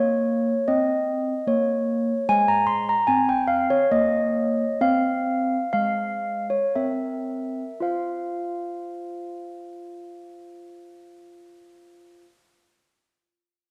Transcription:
0, 0, Header, 1, 2, 480
1, 0, Start_track
1, 0, Key_signature, -4, "minor"
1, 0, Tempo, 796813
1, 1369, Time_signature, 3, 2, 24, 8
1, 1852, Tempo, 832178
1, 2332, Tempo, 914634
1, 3292, Tempo, 998336
1, 3772, Tempo, 1083032
1, 6863, End_track
2, 0, Start_track
2, 0, Title_t, "Handbells"
2, 0, Program_c, 0, 14
2, 0, Note_on_c, 0, 58, 58
2, 0, Note_on_c, 0, 73, 80
2, 310, Note_off_c, 0, 58, 0
2, 386, Note_off_c, 0, 73, 0
2, 408, Note_on_c, 0, 75, 79
2, 410, Note_on_c, 0, 60, 54
2, 792, Note_off_c, 0, 60, 0
2, 868, Note_off_c, 0, 75, 0
2, 886, Note_on_c, 0, 58, 56
2, 890, Note_on_c, 0, 73, 76
2, 1271, Note_off_c, 0, 58, 0
2, 1349, Note_off_c, 0, 73, 0
2, 1377, Note_on_c, 0, 72, 40
2, 1378, Note_on_c, 0, 56, 58
2, 1379, Note_on_c, 0, 80, 106
2, 1494, Note_off_c, 0, 80, 0
2, 1496, Note_on_c, 0, 82, 81
2, 1606, Note_on_c, 0, 84, 93
2, 1613, Note_off_c, 0, 82, 0
2, 1729, Note_off_c, 0, 84, 0
2, 1742, Note_on_c, 0, 82, 84
2, 1760, Note_off_c, 0, 56, 0
2, 1850, Note_on_c, 0, 80, 93
2, 1856, Note_on_c, 0, 60, 57
2, 1857, Note_off_c, 0, 82, 0
2, 1968, Note_off_c, 0, 80, 0
2, 1976, Note_on_c, 0, 79, 80
2, 2083, Note_on_c, 0, 77, 81
2, 2091, Note_off_c, 0, 79, 0
2, 2206, Note_off_c, 0, 77, 0
2, 2215, Note_on_c, 0, 73, 80
2, 2238, Note_off_c, 0, 60, 0
2, 2313, Note_off_c, 0, 72, 0
2, 2330, Note_off_c, 0, 73, 0
2, 2336, Note_on_c, 0, 73, 39
2, 2337, Note_on_c, 0, 58, 53
2, 2337, Note_on_c, 0, 75, 85
2, 2709, Note_off_c, 0, 58, 0
2, 2781, Note_off_c, 0, 73, 0
2, 2784, Note_off_c, 0, 75, 0
2, 2805, Note_on_c, 0, 72, 41
2, 2806, Note_on_c, 0, 60, 64
2, 2808, Note_on_c, 0, 77, 93
2, 3197, Note_off_c, 0, 60, 0
2, 3276, Note_off_c, 0, 77, 0
2, 3288, Note_on_c, 0, 77, 81
2, 3290, Note_on_c, 0, 56, 51
2, 3632, Note_off_c, 0, 77, 0
2, 3660, Note_on_c, 0, 73, 70
2, 3675, Note_off_c, 0, 56, 0
2, 3755, Note_off_c, 0, 72, 0
2, 3777, Note_off_c, 0, 73, 0
2, 3781, Note_on_c, 0, 70, 36
2, 3781, Note_on_c, 0, 76, 69
2, 3782, Note_on_c, 0, 60, 48
2, 4163, Note_off_c, 0, 60, 0
2, 4240, Note_off_c, 0, 70, 0
2, 4240, Note_off_c, 0, 76, 0
2, 4246, Note_on_c, 0, 65, 49
2, 4252, Note_on_c, 0, 72, 41
2, 4255, Note_on_c, 0, 77, 57
2, 6209, Note_off_c, 0, 65, 0
2, 6215, Note_off_c, 0, 72, 0
2, 6218, Note_off_c, 0, 77, 0
2, 6863, End_track
0, 0, End_of_file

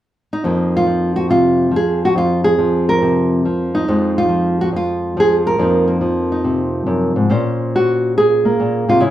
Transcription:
0, 0, Header, 1, 2, 480
1, 0, Start_track
1, 0, Tempo, 427960
1, 500, Time_signature, 4, 2, 24, 8
1, 10211, End_track
2, 0, Start_track
2, 0, Title_t, "Nylon-string guitar"
2, 0, Program_c, 0, 24
2, 369, Note_on_c, 0, 63, 64
2, 494, Note_on_c, 0, 41, 58
2, 501, Note_on_c, 0, 53, 37
2, 505, Note_on_c, 0, 58, 39
2, 506, Note_off_c, 0, 63, 0
2, 519, Note_on_c, 0, 63, 38
2, 859, Note_on_c, 0, 65, 70
2, 966, Note_off_c, 0, 53, 0
2, 970, Note_on_c, 0, 53, 50
2, 1296, Note_off_c, 0, 65, 0
2, 1301, Note_on_c, 0, 66, 68
2, 1454, Note_on_c, 0, 48, 44
2, 1458, Note_off_c, 0, 66, 0
2, 1464, Note_on_c, 0, 65, 73
2, 1916, Note_off_c, 0, 53, 0
2, 1921, Note_on_c, 0, 53, 49
2, 1936, Note_off_c, 0, 48, 0
2, 1941, Note_off_c, 0, 65, 0
2, 1976, Note_on_c, 0, 68, 80
2, 2281, Note_off_c, 0, 68, 0
2, 2300, Note_on_c, 0, 66, 73
2, 2403, Note_off_c, 0, 41, 0
2, 2408, Note_off_c, 0, 63, 0
2, 2408, Note_on_c, 0, 41, 55
2, 2437, Note_off_c, 0, 66, 0
2, 2442, Note_on_c, 0, 65, 75
2, 2736, Note_off_c, 0, 65, 0
2, 2741, Note_on_c, 0, 68, 79
2, 2775, Note_off_c, 0, 58, 0
2, 2895, Note_off_c, 0, 53, 0
2, 2899, Note_on_c, 0, 53, 49
2, 3220, Note_off_c, 0, 68, 0
2, 3241, Note_on_c, 0, 70, 87
2, 3388, Note_on_c, 0, 48, 48
2, 3862, Note_off_c, 0, 48, 0
2, 3868, Note_off_c, 0, 53, 0
2, 3873, Note_on_c, 0, 53, 50
2, 4202, Note_on_c, 0, 63, 78
2, 4346, Note_off_c, 0, 70, 0
2, 4348, Note_off_c, 0, 41, 0
2, 4351, Note_off_c, 0, 53, 0
2, 4352, Note_on_c, 0, 41, 61
2, 4356, Note_on_c, 0, 53, 41
2, 4357, Note_on_c, 0, 56, 44
2, 4688, Note_on_c, 0, 65, 79
2, 4804, Note_off_c, 0, 53, 0
2, 4808, Note_on_c, 0, 53, 53
2, 5150, Note_off_c, 0, 63, 0
2, 5153, Note_off_c, 0, 65, 0
2, 5171, Note_on_c, 0, 66, 71
2, 5255, Note_off_c, 0, 66, 0
2, 5294, Note_off_c, 0, 41, 0
2, 5299, Note_on_c, 0, 41, 48
2, 5343, Note_on_c, 0, 65, 70
2, 5792, Note_off_c, 0, 53, 0
2, 5797, Note_on_c, 0, 53, 53
2, 5799, Note_off_c, 0, 65, 0
2, 5831, Note_on_c, 0, 68, 77
2, 6009, Note_off_c, 0, 68, 0
2, 6132, Note_on_c, 0, 70, 74
2, 6249, Note_off_c, 0, 41, 0
2, 6263, Note_on_c, 0, 41, 60
2, 6266, Note_off_c, 0, 56, 0
2, 6270, Note_off_c, 0, 53, 0
2, 6274, Note_on_c, 0, 53, 45
2, 6285, Note_on_c, 0, 58, 41
2, 6296, Note_on_c, 0, 63, 38
2, 6577, Note_off_c, 0, 58, 0
2, 6590, Note_on_c, 0, 58, 39
2, 6727, Note_off_c, 0, 53, 0
2, 6740, Note_on_c, 0, 53, 46
2, 7073, Note_off_c, 0, 63, 0
2, 7087, Note_on_c, 0, 63, 40
2, 7228, Note_on_c, 0, 48, 48
2, 7696, Note_off_c, 0, 41, 0
2, 7700, Note_on_c, 0, 42, 50
2, 8023, Note_off_c, 0, 42, 0
2, 8030, Note_on_c, 0, 44, 49
2, 8161, Note_off_c, 0, 53, 0
2, 8164, Note_off_c, 0, 48, 0
2, 8164, Note_off_c, 0, 58, 0
2, 8172, Note_off_c, 0, 63, 0
2, 8182, Note_off_c, 0, 44, 0
2, 8184, Note_on_c, 0, 46, 64
2, 8189, Note_on_c, 0, 61, 44
2, 8194, Note_off_c, 0, 70, 0
2, 8198, Note_on_c, 0, 72, 43
2, 8700, Note_on_c, 0, 66, 77
2, 9160, Note_off_c, 0, 66, 0
2, 9171, Note_on_c, 0, 68, 89
2, 9479, Note_on_c, 0, 58, 53
2, 9624, Note_off_c, 0, 46, 0
2, 9643, Note_on_c, 0, 46, 53
2, 9957, Note_off_c, 0, 46, 0
2, 9957, Note_off_c, 0, 72, 0
2, 9966, Note_on_c, 0, 48, 55
2, 9976, Note_on_c, 0, 65, 74
2, 10091, Note_off_c, 0, 58, 0
2, 10094, Note_off_c, 0, 61, 0
2, 10099, Note_on_c, 0, 64, 74
2, 10111, Note_on_c, 0, 49, 65
2, 10113, Note_off_c, 0, 48, 0
2, 10116, Note_off_c, 0, 65, 0
2, 10119, Note_off_c, 0, 68, 0
2, 10211, Note_off_c, 0, 49, 0
2, 10211, Note_off_c, 0, 64, 0
2, 10211, End_track
0, 0, End_of_file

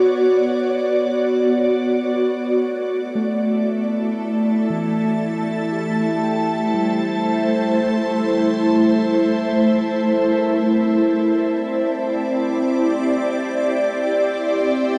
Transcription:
0, 0, Header, 1, 3, 480
1, 0, Start_track
1, 0, Tempo, 1034483
1, 986, Time_signature, 4, 2, 24, 8
1, 1942, Tempo, 1022147
1, 7011, End_track
2, 0, Start_track
2, 0, Title_t, "Ambient pad"
2, 0, Program_c, 0, 92
2, 0, Note_on_c, 0, 59, 72
2, 0, Note_on_c, 0, 66, 72
2, 0, Note_on_c, 0, 73, 74
2, 0, Note_on_c, 0, 74, 81
2, 985, Note_off_c, 0, 73, 0
2, 986, Note_off_c, 0, 59, 0
2, 988, Note_off_c, 0, 66, 0
2, 988, Note_on_c, 0, 57, 66
2, 1139, Note_on_c, 0, 64, 71
2, 1649, Note_off_c, 0, 74, 0
2, 1663, Note_on_c, 0, 81, 62
2, 2709, Note_on_c, 0, 72, 71
2, 4815, Note_off_c, 0, 57, 0
2, 4818, Note_on_c, 0, 60, 81
2, 5138, Note_on_c, 0, 74, 83
2, 5460, Note_on_c, 0, 67, 70
2, 5765, Note_off_c, 0, 81, 0
2, 6041, Note_off_c, 0, 72, 0
2, 6350, Note_on_c, 0, 76, 73
2, 6356, Note_off_c, 0, 64, 0
2, 7011, Note_off_c, 0, 60, 0
2, 7011, Note_off_c, 0, 67, 0
2, 7011, Note_off_c, 0, 74, 0
2, 7011, Note_off_c, 0, 76, 0
2, 7011, End_track
3, 0, Start_track
3, 0, Title_t, "Synth keys"
3, 0, Program_c, 1, 88
3, 0, Control_c, 1, 64, 127
3, 991, Control_c, 1, 64, 0
3, 1061, Control_c, 1, 64, 127
3, 1463, Note_on_c, 1, 57, 67
3, 2183, Note_on_c, 1, 52, 56
3, 2663, Note_on_c, 1, 67, 55
3, 2905, Note_on_c, 1, 79, 62
3, 3143, Note_on_c, 1, 55, 63
3, 3242, Note_off_c, 1, 52, 0
3, 3405, Note_off_c, 1, 57, 0
3, 3861, Note_on_c, 1, 72, 49
3, 4594, Note_off_c, 1, 67, 0
3, 4812, Note_on_c, 1, 70, 61
3, 4820, Control_c, 1, 64, 0
3, 4833, Note_off_c, 1, 79, 0
3, 4896, Control_c, 1, 64, 127
3, 4908, Note_off_c, 1, 72, 0
3, 5072, Note_off_c, 1, 55, 0
3, 5533, Note_on_c, 1, 74, 55
3, 5633, Note_off_c, 1, 70, 0
3, 7011, Note_off_c, 1, 74, 0
3, 7011, End_track
0, 0, End_of_file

